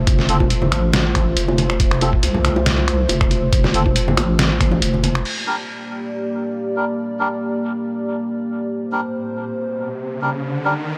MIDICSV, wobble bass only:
0, 0, Header, 1, 2, 480
1, 0, Start_track
1, 0, Key_signature, -2, "minor"
1, 0, Tempo, 431655
1, 81, Time_signature, 4, 2, 24, 8
1, 12208, End_track
2, 0, Start_track
2, 0, Title_t, "Wobble bass"
2, 0, Program_c, 0, 39
2, 0, Note_on_c, 0, 29, 96
2, 303, Note_off_c, 0, 29, 0
2, 320, Note_on_c, 0, 29, 91
2, 783, Note_off_c, 0, 29, 0
2, 800, Note_on_c, 0, 33, 95
2, 1502, Note_off_c, 0, 33, 0
2, 1521, Note_on_c, 0, 29, 100
2, 1983, Note_off_c, 0, 29, 0
2, 2000, Note_on_c, 0, 29, 96
2, 2463, Note_off_c, 0, 29, 0
2, 2480, Note_on_c, 0, 36, 97
2, 3423, Note_off_c, 0, 36, 0
2, 3441, Note_on_c, 0, 29, 99
2, 4143, Note_off_c, 0, 29, 0
2, 4161, Note_on_c, 0, 29, 96
2, 4623, Note_off_c, 0, 29, 0
2, 4640, Note_on_c, 0, 33, 94
2, 5342, Note_off_c, 0, 33, 0
2, 5361, Note_on_c, 0, 29, 102
2, 5823, Note_off_c, 0, 29, 0
2, 12208, End_track
0, 0, End_of_file